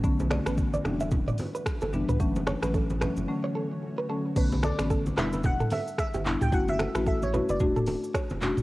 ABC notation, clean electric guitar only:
X:1
M:4/4
L:1/16
Q:"Swing 16ths" 1/4=111
K:Bm
V:1 name="Clean electric guitar"
z2 d B z d z e z d z B z A z B | z2 c B A z B z2 c A z2 B A z | z2 A B A z B B z A A z2 G z G | z2 A B A z B B z A A z c2 z2 |]